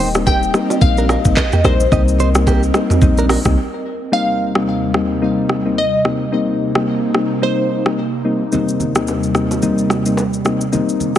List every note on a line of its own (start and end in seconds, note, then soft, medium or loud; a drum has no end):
0.00 0.50 D#1 loud
0.00 0.11 G3 loud
0.00 0.11 A#3 medium
0.00 0.11 C4 medium
0.00 1.90 C4 medium
0.00 0.11 D#4 loud
0.00 0.09 D#4 medium
0.00 1.90 G4 medium
0.00 4.08 D#5 medium
0.00 0.26 G5 loud
0.00 open hi-hat medium
0.00 shaker medium
0.15 0.51 G3 medium
0.15 0.51 A#3 medium
0.15 0.52 C4 medium
0.15 0.52 D#4 medium
0.15 cross-stick loud
0.15 low bongo medium
0.15 shaker medium
0.27 0.42 A#3 medium
0.27 0.42 G4 medium
0.27 0.83 G5 loud
0.27 kick loud
0.27 high bongo medium
0.27 shaker medium
0.43 shaker soft
0.54 0.80 G3 medium
0.54 0.80 A#3 medium
0.54 0.80 C4 medium
0.54 0.80 D#4 medium
0.54 cross-stick loud
0.54 high bongo medium
0.54 shaker medium
0.70 low bongo medium
0.70 shaker medium
0.81 1.17 A#1 loud
0.81 1.21 G3 loud
0.81 1.21 A#3 medium
0.81 1.22 C4 medium
0.81 1.22 D#4 loud
0.81 1.38 F5 loud
0.81 kick loud
0.81 low conga medium
0.81 shaker medium
0.97 1.05 D4 medium
0.97 1.04 A#4 medium
0.97 shaker medium
1.09 1.19 D4 medium
1.09 1.18 A#4 medium
1.09 cross-stick loud
1.09 low bongo medium
1.09 shaker medium
1.25 1.35 G1 medium
1.25 1.39 G3 medium
1.25 1.39 A#3 medium
1.25 1.39 C4 medium
1.25 1.39 D#4 medium
1.25 kick loud
1.25 shaker loud
1.37 1.65 D#5 loud
1.37 kick loud
1.37 clap medium
1.37 high bongo loud
1.37 shaker medium
1.52 1.60 A#3 medium
1.52 1.59 G4 medium
1.52 mid tom loud
1.52 shaker medium
1.64 1.87 A#1 medium
1.64 1.82 G3 medium
1.64 1.82 A#3 medium
1.64 1.82 C4 medium
1.64 1.74 D4 medium
1.64 1.82 D#4 medium
1.64 1.73 A#4 medium
1.64 2.43 C5 medium
1.64 cross-stick loud
1.64 shaker medium
1.80 shaker loud
1.91 2.70 C2 loud
1.91 2.31 G3 medium
1.91 2.31 A#3 medium
1.91 2.31 C4 medium
1.91 4.10 C4 medium
1.91 2.32 D#4 loud
1.91 2.01 G4 medium
1.91 4.10 A#4 medium
1.91 2.01 D#5 loud
1.91 kick loud
1.91 low conga medium
1.91 shaker medium
2.08 shaker medium
2.20 2.29 D#4 medium
2.20 2.28 C5 medium
2.20 low conga medium
2.20 shaker medium
2.35 2.71 G3 medium
2.35 2.71 A#3 medium
2.35 2.72 C4 medium
2.35 2.72 D#4 medium
2.35 cross-stick loud
2.35 low bongo medium
2.35 shaker medium
2.47 2.62 A#3 medium
2.47 2.62 G4 medium
2.47 kick loud
2.47 high bongo medium
2.47 shaker medium
2.63 shaker soft
2.74 3.00 G3 medium
2.74 3.00 A#3 medium
2.74 3.00 C4 medium
2.74 3.00 D#4 medium
2.74 cross-stick loud
2.74 high bongo medium
2.74 low bongo medium
2.74 shaker medium
2.90 mid tom medium
2.90 low bongo medium
2.90 shaker medium
3.02 3.37 A#1 medium
3.02 3.41 G3 medium
3.02 3.42 A#3 medium
3.02 3.42 C4 medium
3.02 3.42 D#4 loud
3.02 kick loud
3.02 mid tom medium
3.02 low conga medium
3.02 shaker medium
3.17 3.25 D4 medium
3.17 3.24 A#4 medium
3.17 shaker medium
3.29 3.39 D4 medium
3.29 3.38 A#4 medium
3.29 cross-stick loud
3.29 open hi-hat medium
3.29 low bongo medium
3.29 shaker medium
3.45 3.55 C2 medium
3.45 3.57 G3 medium
3.45 3.57 A#3 medium
3.45 3.57 C4 medium
3.45 3.57 D#4 medium
3.45 kick loud
3.45 cross-stick loud
3.45 shaker loud
4.12 6.30 D#2 medium
4.12 8.48 C3 medium
4.12 4.52 G3 medium
4.12 6.30 G3 medium
4.12 4.52 A#3 medium
4.12 4.52 C4 medium
4.12 4.52 D#4 medium
4.12 5.83 F5 loud
4.55 4.92 G3 medium
4.55 4.92 A#3 medium
4.55 4.92 C4 medium
4.55 4.92 D#4 medium
4.55 cross-stick loud
4.94 5.20 G3 medium
4.94 5.20 A#3 medium
4.94 5.20 C4 medium
4.94 5.20 D#4 medium
4.94 cross-stick loud
5.22 5.62 G3 medium
5.22 5.62 A#3 medium
5.22 5.62 C4 medium
5.22 5.62 D#4 loud
5.49 cross-stick medium
5.65 5.79 G3 medium
5.65 5.79 A#3 medium
5.65 5.79 C4 medium
5.65 5.80 D#4 medium
5.78 7.39 D#5 medium
6.04 6.22 G3 medium
6.04 6.22 A#3 medium
6.04 6.22 C4 medium
6.04 6.22 D#4 medium
6.04 cross-stick medium
6.32 6.72 G3 medium
6.32 8.50 A#3 medium
6.32 6.72 A#3 medium
6.32 6.72 C4 medium
6.32 8.50 D#4 medium
6.32 6.72 D#4 medium
6.75 7.12 G3 medium
6.75 7.12 A#3 medium
6.75 7.12 C4 medium
6.75 7.12 D#4 medium
6.75 cross-stick loud
7.14 7.40 G3 medium
7.14 7.40 A#3 medium
7.14 7.40 C4 medium
7.14 7.41 D#4 medium
7.14 cross-stick loud
7.42 7.82 G3 medium
7.42 7.82 A#3 medium
7.42 7.82 C4 medium
7.42 7.82 D#4 loud
7.42 8.21 C5 medium
7.86 7.99 G3 medium
7.86 8.00 A#3 medium
7.86 8.00 C4 medium
7.86 8.00 D#4 medium
7.86 cross-stick loud
8.25 8.42 G3 medium
8.25 8.42 A#3 medium
8.25 8.43 C4 medium
8.25 8.43 D#4 medium
8.52 10.70 D#2 medium
8.52 11.19 C3 medium
8.52 8.92 G3 medium
8.52 10.70 G3 medium
8.52 8.92 A#3 medium
8.52 8.92 C4 medium
8.52 8.92 D#4 medium
8.52 low conga medium
8.52 shaker medium
8.69 shaker soft
8.80 low conga medium
8.80 shaker medium
8.95 9.32 G3 medium
8.95 9.32 A#3 medium
8.95 9.32 C4 medium
8.95 9.32 D#4 medium
8.95 cross-stick loud
8.95 shaker medium
9.07 high bongo medium
9.07 shaker medium
9.23 shaker soft
9.35 9.60 G3 medium
9.35 9.61 A#3 medium
9.35 9.61 C4 medium
9.35 9.61 D#4 medium
9.35 cross-stick medium
9.35 shaker soft
9.51 low bongo medium
9.51 shaker medium
9.62 10.02 G3 medium
9.62 10.02 A#3 medium
9.62 10.02 C4 medium
9.62 10.02 D#4 loud
9.62 low conga medium
9.62 shaker medium
9.78 shaker soft
9.90 cross-stick medium
9.90 low bongo medium
9.90 shaker medium
10.06 10.20 G3 medium
10.06 10.20 A#3 medium
10.06 10.20 C4 medium
10.06 10.20 D#4 medium
10.06 shaker medium
10.17 high bongo medium
10.17 shaker medium
10.33 shaker medium
10.45 10.62 G3 medium
10.45 10.63 A#3 medium
10.45 10.63 C4 medium
10.45 10.63 D#4 medium
10.45 cross-stick medium
10.45 shaker soft
10.61 shaker medium
10.72 11.12 G3 medium
10.72 11.12 A#3 medium
10.72 11.19 A#3 medium
10.72 11.12 C4 medium
10.72 11.12 D#4 loud
10.72 11.19 D#4 medium
10.72 low conga medium
10.72 shaker medium
10.89 shaker medium
11.00 low conga medium
11.00 shaker medium
11.16 11.19 G3 medium
11.16 shaker medium